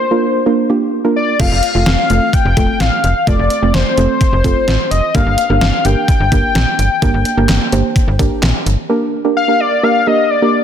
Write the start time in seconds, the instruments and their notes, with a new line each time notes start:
Already playing: analog synth lead C5
0.11 synth pluck A#3 D4 F4 A#4
0.46 synth pluck A#3 D4 F4 A#4
0.70 synth pluck A#3 D4 F4 G4
1.05 synth pluck A#3 D4 F4 A#4
1.16 analog synth lead D5
1.40 fm bass F1, synth pluck A3 C4 F4 A4, analog synth lead F5, kick, closed hi-hat, crash
1.51 fm bass F1
1.63 closed hi-hat
1.75 fm bass F1, synth pluck A3 C4 F4 A4
1.86 fm bass F1, analog synth lead F5, snare, closed hi-hat
2.10 fm bass F1, synth pluck A3 C4 F4 A4, closed hi-hat
2.33 analog synth lead G5, kick, closed hi-hat
2.45 fm bass F1
2.57 fm bass F1, synth pluck A3 C4 F4 A4, kick, closed hi-hat
2.80 fm bass A1, analog synth lead F5, snare, closed hi-hat
3.04 fm bass F1, closed hi-hat
3.27 fm bass F1, synth pluck A3 C4 F4 A4, analog synth lead D5, kick, closed hi-hat
3.39 fm bass F1
3.50 closed hi-hat
3.62 fm bass F1, synth pluck A3 C4 F4 A4
3.74 fm bass F1, analog synth lead C5, snare, closed hi-hat
3.98 fm bass F1, synth pluck A3 C4 F4 A4, closed hi-hat
4.21 kick, closed hi-hat
4.33 fm bass F1
4.44 fm bass F1, synth pluck A3 C4 F4 A4, kick, closed hi-hat
4.68 fm bass A1, snare, closed hi-hat
4.91 fm bass F1, analog synth lead D#5, closed hi-hat
5.15 fm bass G1, synth pluck A#3 D4 G4 A#4, analog synth lead F5, kick, closed hi-hat
5.26 fm bass G1
5.38 closed hi-hat
5.50 fm bass G1, synth pluck A#3 D4 G4 A#4
5.61 fm bass G1, analog synth lead F5, snare, closed hi-hat
5.85 fm bass G1, synth pluck A#3 D4 G4 A#4, analog synth lead G5, closed hi-hat
6.08 kick, closed hi-hat
6.20 fm bass G1
6.32 fm bass G1, synth pluck A#3 D4 G4 A#4, kick, closed hi-hat
6.55 fm bass A#1, snare, closed hi-hat
6.79 fm bass G1, closed hi-hat
7.02 fm bass G1, synth pluck A#3 D4 G4 A#4, kick, closed hi-hat
7.14 fm bass G1
7.25 closed hi-hat
7.37 fm bass G1, synth pluck A#3 D4 G4 A#4
7.49 fm bass G1, snare, clap, closed hi-hat
7.72 fm bass G1, synth pluck A#3 D4 G4 C5, closed hi-hat
7.96 kick, closed hi-hat
8.08 fm bass G1
8.19 fm bass G1, synth pluck A#3 D4 G4 A#4, kick, closed hi-hat
8.43 fm bass A#1, snare, clap, closed hi-hat
8.66 fm bass G1, closed hi-hat
8.89 synth pluck A#3 D4 G4 A#4
9.25 synth pluck A#3 D4 G4 A#4
9.37 analog synth lead F5
9.48 synth pluck A#3 D4 G4 A#4
9.60 analog synth lead D5
9.83 synth pluck A#3 D4 G4 A#4, analog synth lead F5
10.07 synth pluck A#3 D4 G4 A#4, analog synth lead D#5
10.30 analog synth lead D5
10.42 synth pluck A#3 D4 G4 A#4